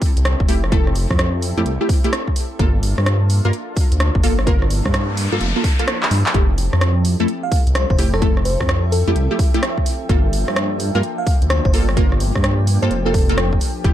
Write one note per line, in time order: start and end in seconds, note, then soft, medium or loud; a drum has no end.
0.00 2.56 C4 medium
0.00 2.56 E4 medium
0.00 2.56 G4 medium
0.00 2.60 A4 medium
0.00 10.05 A4 medium
0.00 4.12 E5 medium
0.00 kick loud
0.00 open hi-hat medium
0.17 0.35 C2 medium
0.17 closed hi-hat medium
0.25 cross-stick loud
0.25 closed hi-hat medium
0.40 1.07 F1 medium
0.40 kick loud
0.48 0.62 A3 medium
0.48 0.62 E4 medium
0.48 0.62 G4 loud
0.48 open hi-hat loud
0.64 cross-stick medium
0.72 0.90 A3 loud
0.72 0.90 E4 medium
0.72 0.90 A4 loud
0.72 kick loud
0.72 closed hi-hat medium
0.87 cross-stick soft
0.95 open hi-hat loud
1.10 1.53 F2 medium
1.10 kick medium
1.10 cross-stick medium
1.19 cross-stick loud
1.19 closed hi-hat medium
1.42 open hi-hat loud
1.57 1.64 F2 medium
1.57 1.72 A3 loud
1.57 1.72 E4 medium
1.57 1.72 G4 loud
1.57 closed hi-hat soft
1.66 1.78 C2 loud
1.66 closed hi-hat medium
1.81 1.88 A3 medium
1.81 1.88 E4 medium
1.81 1.88 G4 medium
1.89 kick loud
1.89 open hi-hat loud
2.04 2.11 A3 loud
2.04 2.11 E4 medium
2.04 2.11 G4 loud
2.04 closed hi-hat medium
2.13 cross-stick loud
2.13 closed hi-hat medium
2.28 kick medium
2.36 open hi-hat loud
2.59 2.94 G1 medium
2.59 13.94 F3 medium
2.59 2.78 A#3 medium
2.59 6.31 A#3 medium
2.59 6.31 D4 medium
2.59 2.78 F4 medium
2.59 4.45 F4 medium
2.59 2.78 A4 loud
2.59 kick loud
2.59 closed hi-hat medium
2.79 6.34 A#3 medium
2.79 open hi-hat loud
2.98 3.41 G2 medium
2.98 cross-stick medium
3.06 cross-stick loud
3.06 closed hi-hat medium
3.30 open hi-hat loud
3.45 3.52 G2 medium
3.45 3.52 A#3 loud
3.45 3.52 F4 medium
3.45 3.52 A#4 loud
3.45 closed hi-hat soft
3.53 closed hi-hat medium
3.77 kick loud
3.77 open hi-hat loud
3.92 4.10 D2 loud
3.92 closed hi-hat medium
4.00 cross-stick loud
4.00 closed hi-hat medium
4.15 4.82 G1 medium
4.15 kick loud
4.23 4.37 A#3 medium
4.23 4.37 F4 medium
4.23 4.37 A4 loud
4.23 open hi-hat loud
4.39 cross-stick medium
4.47 4.65 A#3 loud
4.47 6.33 E4 medium
4.47 4.65 F4 medium
4.47 4.65 A#4 loud
4.47 kick loud
4.47 closed hi-hat medium
4.47 noise sweep medium
4.62 cross-stick medium
4.70 open hi-hat loud
4.85 5.28 G2 medium
4.85 kick medium
4.85 cross-stick medium
4.94 cross-stick loud
4.94 closed hi-hat medium
5.17 open hi-hat loud
5.32 5.39 G2 medium
5.32 5.47 A#3 loud
5.32 5.47 F4 medium
5.32 5.47 A4 loud
5.32 closed hi-hat soft
5.41 5.53 F1 loud
5.41 closed hi-hat medium
5.56 5.63 A#3 medium
5.56 5.63 F4 medium
5.56 5.63 A4 medium
5.64 kick loud
5.64 open hi-hat loud
5.79 5.87 A#3 loud
5.79 5.87 F4 medium
5.79 5.87 A4 loud
5.79 closed hi-hat medium
5.88 cross-stick loud
5.88 closed hi-hat medium
6.03 clap medium
6.11 6.24 G2 medium
6.11 open hi-hat loud
6.26 clap loud
6.34 6.69 F1 loud
6.34 6.53 A3 medium
6.34 10.06 C4 medium
6.34 10.06 E4 medium
6.34 6.53 E4 medium
6.34 10.06 G4 medium
6.34 6.53 G4 loud
6.34 kick loud
6.34 closed hi-hat medium
6.50 10.09 A4 medium
6.58 13.94 G5 medium
6.58 open hi-hat loud
6.73 7.16 F2 medium
6.73 cross-stick medium
6.78 11.62 E5 medium
6.78 cross-stick loud
6.78 closed hi-hat medium
7.05 open hi-hat loud
7.20 7.27 F2 medium
7.20 7.27 A3 medium
7.20 7.27 E4 medium
7.20 7.27 A4 loud
7.20 closed hi-hat soft
7.28 closed hi-hat medium
7.43 7.61 F5 medium
7.52 kick loud
7.52 open hi-hat loud
7.67 7.85 C2 loud
7.67 closed hi-hat medium
7.75 7.85 C5 medium
7.75 cross-stick loud
7.75 closed hi-hat medium
7.90 8.57 F1 medium
7.90 7.96 C5 medium
7.90 kick loud
7.99 8.12 A3 loud
7.99 8.12 E4 medium
7.99 8.12 G4 loud
7.99 open hi-hat loud
8.14 8.31 A4 medium
8.14 cross-stick medium
8.22 8.40 A3 loud
8.22 8.40 E4 medium
8.22 8.40 A4 loud
8.22 kick loud
8.22 closed hi-hat medium
8.37 cross-stick medium
8.45 8.66 C5 medium
8.45 open hi-hat loud
8.60 9.04 F2 medium
8.60 kick medium
8.60 cross-stick medium
8.69 cross-stick loud
8.69 closed hi-hat medium
8.92 9.39 A4 medium
8.92 open hi-hat loud
9.07 9.14 F2 medium
9.07 9.22 A3 medium
9.07 9.22 E4 medium
9.07 9.22 G4 loud
9.07 closed hi-hat soft
9.16 9.28 C2 loud
9.16 closed hi-hat medium
9.31 9.38 A3 medium
9.31 9.38 E4 medium
9.31 9.38 G4 loud
9.39 kick loud
9.39 open hi-hat loud
9.54 9.61 A3 loud
9.54 9.61 E4 medium
9.54 9.61 G4 loud
9.54 closed hi-hat medium
9.63 cross-stick loud
9.63 closed hi-hat medium
9.78 kick medium
9.86 open hi-hat loud
10.09 10.44 G1 loud
10.09 10.28 A#3 medium
10.09 13.81 A#3 medium
10.09 13.81 D4 medium
10.09 13.81 F4 medium
10.09 10.28 F4 medium
10.09 11.95 A4 medium
10.09 10.28 A4 loud
10.09 kick loud
10.09 closed hi-hat medium
10.33 open hi-hat loud
10.41 13.84 A#3 medium
10.48 10.91 G2 medium
10.48 cross-stick medium
10.56 cross-stick loud
10.56 closed hi-hat medium
10.80 open hi-hat loud
10.95 11.02 G2 medium
10.95 11.02 A#3 loud
10.95 11.02 F4 medium
10.95 11.02 A#4 loud
10.95 closed hi-hat soft
11.03 closed hi-hat medium
11.18 11.36 F5 medium
11.27 kick loud
11.27 open hi-hat medium
11.42 11.60 D2 loud
11.42 closed hi-hat medium
11.50 11.60 C5 medium
11.50 cross-stick loud
11.50 closed hi-hat medium
11.65 12.32 G1 medium
11.65 11.70 C5 medium
11.65 kick loud
11.74 11.87 A#3 loud
11.74 11.87 F4 medium
11.74 11.87 A4 loud
11.74 open hi-hat loud
11.89 cross-stick medium
11.97 12.15 A#3 loud
11.97 12.15 F4 medium
11.97 13.94 G4 medium
11.97 12.15 A#4 loud
11.97 kick loud
11.97 closed hi-hat medium
12.12 cross-stick soft
12.20 open hi-hat loud
12.35 12.79 G2 medium
12.35 kick medium
12.35 cross-stick medium
12.44 cross-stick loud
12.44 closed hi-hat medium
12.67 open hi-hat loud
12.82 12.89 G2 medium
12.82 12.97 A#3 loud
12.82 12.97 F4 medium
12.82 12.97 A4 loud
12.82 12.88 C5 medium
12.82 closed hi-hat soft
12.91 13.59 F1 medium
12.91 13.00 C5 medium
12.91 closed hi-hat medium
13.05 13.13 A#3 medium
13.05 13.13 F4 medium
13.05 13.70 A4 medium
13.05 13.13 A4 medium
13.14 kick loud
13.14 open hi-hat loud
13.29 13.37 A#3 loud
13.29 13.37 F4 medium
13.29 13.37 A4 loud
13.29 closed hi-hat medium
13.38 cross-stick loud
13.38 closed hi-hat medium
13.53 kick medium
13.61 open hi-hat loud
13.84 13.94 F1 loud
13.84 13.94 A3 medium
13.84 13.94 C4 medium
13.84 13.94 E4 medium
13.84 13.94 G4 loud
13.84 13.94 A4 medium
13.84 kick loud
13.84 closed hi-hat medium